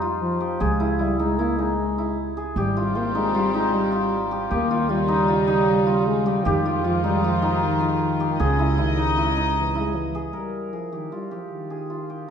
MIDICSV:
0, 0, Header, 1, 5, 480
1, 0, Start_track
1, 0, Tempo, 389610
1, 760, Time_signature, 5, 2, 24, 8
1, 15156, End_track
2, 0, Start_track
2, 0, Title_t, "Hammered dulcimer"
2, 0, Program_c, 0, 15
2, 0, Note_on_c, 0, 63, 73
2, 0, Note_on_c, 0, 67, 99
2, 20, Note_on_c, 0, 65, 70
2, 493, Note_off_c, 0, 67, 0
2, 498, Note_on_c, 0, 67, 62
2, 743, Note_on_c, 0, 68, 89
2, 817, Note_off_c, 0, 67, 0
2, 985, Note_on_c, 0, 64, 76
2, 1059, Note_off_c, 0, 63, 0
2, 1059, Note_off_c, 0, 65, 0
2, 1215, Note_off_c, 0, 64, 0
2, 1219, Note_on_c, 0, 64, 63
2, 1472, Note_on_c, 0, 63, 69
2, 1546, Note_off_c, 0, 64, 0
2, 1711, Note_on_c, 0, 64, 75
2, 1785, Note_off_c, 0, 63, 0
2, 1956, Note_on_c, 0, 63, 67
2, 2029, Note_off_c, 0, 64, 0
2, 2443, Note_on_c, 0, 64, 65
2, 2517, Note_off_c, 0, 63, 0
2, 2914, Note_off_c, 0, 68, 0
2, 2919, Note_on_c, 0, 68, 67
2, 3166, Note_on_c, 0, 67, 89
2, 3240, Note_off_c, 0, 68, 0
2, 3409, Note_on_c, 0, 65, 74
2, 3483, Note_off_c, 0, 64, 0
2, 3634, Note_off_c, 0, 65, 0
2, 3639, Note_on_c, 0, 65, 71
2, 3879, Note_on_c, 0, 63, 74
2, 4114, Note_off_c, 0, 65, 0
2, 4119, Note_on_c, 0, 65, 76
2, 4357, Note_off_c, 0, 63, 0
2, 4362, Note_on_c, 0, 63, 80
2, 4825, Note_off_c, 0, 65, 0
2, 4830, Note_on_c, 0, 65, 66
2, 5308, Note_off_c, 0, 67, 0
2, 5313, Note_on_c, 0, 67, 73
2, 5547, Note_off_c, 0, 67, 0
2, 5552, Note_on_c, 0, 67, 85
2, 5794, Note_off_c, 0, 65, 0
2, 5799, Note_on_c, 0, 65, 76
2, 6020, Note_off_c, 0, 65, 0
2, 6025, Note_on_c, 0, 65, 76
2, 6257, Note_off_c, 0, 63, 0
2, 6262, Note_on_c, 0, 63, 81
2, 6500, Note_off_c, 0, 65, 0
2, 6505, Note_on_c, 0, 65, 79
2, 6740, Note_off_c, 0, 63, 0
2, 6745, Note_on_c, 0, 63, 83
2, 7222, Note_off_c, 0, 65, 0
2, 7227, Note_on_c, 0, 65, 71
2, 7705, Note_off_c, 0, 67, 0
2, 7710, Note_on_c, 0, 67, 73
2, 7943, Note_off_c, 0, 67, 0
2, 7948, Note_on_c, 0, 67, 91
2, 8194, Note_off_c, 0, 65, 0
2, 8199, Note_on_c, 0, 65, 74
2, 8425, Note_off_c, 0, 65, 0
2, 8430, Note_on_c, 0, 65, 72
2, 8666, Note_off_c, 0, 63, 0
2, 8671, Note_on_c, 0, 63, 74
2, 8916, Note_off_c, 0, 65, 0
2, 8921, Note_on_c, 0, 65, 74
2, 9140, Note_off_c, 0, 63, 0
2, 9145, Note_on_c, 0, 63, 77
2, 9610, Note_off_c, 0, 65, 0
2, 9615, Note_on_c, 0, 65, 71
2, 10098, Note_off_c, 0, 67, 0
2, 10103, Note_on_c, 0, 67, 71
2, 10344, Note_on_c, 0, 68, 95
2, 10418, Note_off_c, 0, 67, 0
2, 10580, Note_on_c, 0, 64, 81
2, 10654, Note_off_c, 0, 63, 0
2, 10654, Note_off_c, 0, 65, 0
2, 10809, Note_off_c, 0, 64, 0
2, 10814, Note_on_c, 0, 64, 76
2, 11059, Note_on_c, 0, 63, 75
2, 11133, Note_off_c, 0, 64, 0
2, 11301, Note_on_c, 0, 64, 71
2, 11375, Note_off_c, 0, 63, 0
2, 11542, Note_on_c, 0, 63, 72
2, 11616, Note_off_c, 0, 64, 0
2, 12013, Note_on_c, 0, 64, 68
2, 12087, Note_off_c, 0, 63, 0
2, 12497, Note_off_c, 0, 68, 0
2, 12502, Note_on_c, 0, 68, 67
2, 12729, Note_on_c, 0, 70, 61
2, 13214, Note_off_c, 0, 68, 0
2, 13219, Note_on_c, 0, 68, 47
2, 13459, Note_on_c, 0, 67, 52
2, 13533, Note_off_c, 0, 68, 0
2, 13701, Note_on_c, 0, 65, 49
2, 13775, Note_off_c, 0, 64, 0
2, 13932, Note_off_c, 0, 67, 0
2, 13937, Note_on_c, 0, 67, 52
2, 14418, Note_on_c, 0, 68, 50
2, 14492, Note_off_c, 0, 67, 0
2, 14655, Note_off_c, 0, 65, 0
2, 14660, Note_on_c, 0, 65, 46
2, 14902, Note_on_c, 0, 67, 50
2, 14975, Note_off_c, 0, 68, 0
2, 15129, Note_off_c, 0, 70, 0
2, 15156, Note_off_c, 0, 65, 0
2, 15156, Note_off_c, 0, 67, 0
2, 15156, End_track
3, 0, Start_track
3, 0, Title_t, "String section"
3, 0, Program_c, 1, 48
3, 3159, Note_on_c, 1, 67, 64
3, 3166, Note_on_c, 1, 48, 64
3, 3170, Note_on_c, 1, 55, 66
3, 5534, Note_off_c, 1, 67, 0
3, 5536, Note_off_c, 1, 55, 0
3, 5538, Note_off_c, 1, 48, 0
3, 5545, Note_on_c, 1, 63, 70
3, 5548, Note_on_c, 1, 49, 71
3, 5550, Note_on_c, 1, 55, 60
3, 7924, Note_off_c, 1, 63, 0
3, 7925, Note_off_c, 1, 49, 0
3, 7926, Note_off_c, 1, 55, 0
3, 7948, Note_on_c, 1, 51, 74
3, 7955, Note_on_c, 1, 65, 68
3, 7956, Note_on_c, 1, 56, 64
3, 10323, Note_off_c, 1, 51, 0
3, 10326, Note_off_c, 1, 65, 0
3, 10327, Note_off_c, 1, 56, 0
3, 10340, Note_on_c, 1, 75, 78
3, 10341, Note_on_c, 1, 49, 64
3, 10351, Note_on_c, 1, 56, 68
3, 12722, Note_off_c, 1, 49, 0
3, 12722, Note_off_c, 1, 75, 0
3, 12727, Note_off_c, 1, 56, 0
3, 15156, End_track
4, 0, Start_track
4, 0, Title_t, "French horn"
4, 0, Program_c, 2, 60
4, 270, Note_on_c, 2, 53, 96
4, 757, Note_on_c, 2, 56, 84
4, 776, Note_off_c, 2, 53, 0
4, 1232, Note_on_c, 2, 55, 88
4, 1250, Note_off_c, 2, 56, 0
4, 1476, Note_off_c, 2, 55, 0
4, 1482, Note_on_c, 2, 56, 98
4, 1710, Note_on_c, 2, 58, 90
4, 1728, Note_off_c, 2, 56, 0
4, 1947, Note_on_c, 2, 56, 91
4, 1965, Note_off_c, 2, 58, 0
4, 2914, Note_off_c, 2, 56, 0
4, 3160, Note_on_c, 2, 55, 89
4, 3648, Note_on_c, 2, 58, 85
4, 3666, Note_off_c, 2, 55, 0
4, 3868, Note_off_c, 2, 58, 0
4, 3875, Note_on_c, 2, 56, 92
4, 4101, Note_off_c, 2, 56, 0
4, 4122, Note_on_c, 2, 55, 89
4, 4369, Note_on_c, 2, 56, 82
4, 4387, Note_off_c, 2, 55, 0
4, 4609, Note_on_c, 2, 55, 81
4, 4627, Note_off_c, 2, 56, 0
4, 5233, Note_off_c, 2, 55, 0
4, 5561, Note_on_c, 2, 58, 94
4, 6032, Note_on_c, 2, 55, 98
4, 6050, Note_off_c, 2, 58, 0
4, 7473, Note_on_c, 2, 56, 91
4, 7492, Note_off_c, 2, 55, 0
4, 7715, Note_on_c, 2, 55, 86
4, 7734, Note_off_c, 2, 56, 0
4, 7955, Note_on_c, 2, 51, 75
4, 7974, Note_off_c, 2, 55, 0
4, 8431, Note_on_c, 2, 53, 79
4, 8450, Note_off_c, 2, 51, 0
4, 8672, Note_off_c, 2, 53, 0
4, 8683, Note_on_c, 2, 55, 92
4, 8925, Note_on_c, 2, 53, 81
4, 8943, Note_off_c, 2, 55, 0
4, 9405, Note_on_c, 2, 51, 84
4, 9423, Note_off_c, 2, 53, 0
4, 10376, Note_on_c, 2, 49, 79
4, 10394, Note_off_c, 2, 51, 0
4, 10842, Note_on_c, 2, 51, 75
4, 10860, Note_off_c, 2, 49, 0
4, 11465, Note_off_c, 2, 51, 0
4, 11793, Note_on_c, 2, 52, 72
4, 12015, Note_off_c, 2, 52, 0
4, 12029, Note_on_c, 2, 56, 79
4, 12272, Note_on_c, 2, 52, 67
4, 12290, Note_off_c, 2, 56, 0
4, 12741, Note_off_c, 2, 52, 0
4, 12748, Note_on_c, 2, 55, 55
4, 13223, Note_on_c, 2, 53, 53
4, 13241, Note_off_c, 2, 55, 0
4, 13471, Note_on_c, 2, 51, 57
4, 13490, Note_off_c, 2, 53, 0
4, 13706, Note_off_c, 2, 51, 0
4, 13713, Note_on_c, 2, 55, 57
4, 13938, Note_off_c, 2, 55, 0
4, 13952, Note_on_c, 2, 53, 52
4, 14061, Note_off_c, 2, 53, 0
4, 14180, Note_on_c, 2, 51, 57
4, 15104, Note_off_c, 2, 51, 0
4, 15156, End_track
5, 0, Start_track
5, 0, Title_t, "Upright bass"
5, 0, Program_c, 3, 32
5, 0, Note_on_c, 3, 41, 81
5, 715, Note_off_c, 3, 41, 0
5, 751, Note_on_c, 3, 37, 76
5, 3108, Note_off_c, 3, 37, 0
5, 3153, Note_on_c, 3, 32, 79
5, 5507, Note_off_c, 3, 32, 0
5, 5559, Note_on_c, 3, 39, 71
5, 7907, Note_off_c, 3, 39, 0
5, 7960, Note_on_c, 3, 41, 81
5, 10305, Note_off_c, 3, 41, 0
5, 10352, Note_on_c, 3, 37, 79
5, 12704, Note_off_c, 3, 37, 0
5, 15156, End_track
0, 0, End_of_file